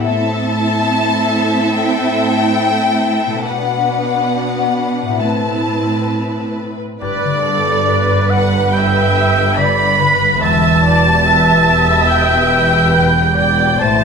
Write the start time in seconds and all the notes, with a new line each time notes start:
Already playing: A2 C4 E4
0.01 E5
0.05 A2 C4 E4 A4 E5 A5
1.76 G5
3.26 B2
3.30 B3
3.35 D4
3.40 B4
3.44 B2 B3 D4 B4 F#5
5.02 A2
5.06 C4
5.11 E4
5.15 B4
5.20 A2 C4 E4 B4 A5
7.01 G1 G2 B4 D5
7.24 D3
7.46 B3 A4
7.67 G4
7.89 B4
8.10 G4
8.30 D5 F#5
8.52 B5
8.72 E5 G5
8.93 B4
9.15 G4
9.36 B3
9.56 D3 D5 B5
9.78 B3
9.99 D3 B4
10.21 B3
10.41 E1 E2 G4 E5 A5
10.64 B2
10.84 B3 D5
11.06 G4
11.27 B4 E5
11.48 G4
11.69 G5
11.90 B5
12.10 G5
12.32 B4
12.53 G4
12.75 B3
12.95 B2 B4
13.17 B3
13.36 B2 D5 G5
13.60 B3
13.79 A1 A2 C5 A5
14.01 E3